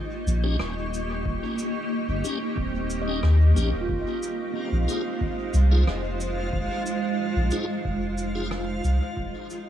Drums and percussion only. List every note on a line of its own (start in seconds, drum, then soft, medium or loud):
0.28 cabasa medium
0.59 cross-stick medium
0.94 cabasa medium
1.25 kick loud
1.58 cabasa medium
2.25 cabasa medium
2.57 kick loud
2.90 cabasa medium
3.23 cross-stick medium
3.57 cabasa medium
3.89 kick loud
4.23 cabasa medium
4.89 cabasa medium
5.21 kick loud
5.54 cabasa medium
5.87 cross-stick medium
6.21 cabasa medium
6.53 kick loud
6.86 cabasa medium
7.51 cabasa medium
7.85 kick loud
8.18 cabasa medium
8.51 cross-stick medium
8.84 cabasa medium
9.17 kick loud
9.50 cabasa medium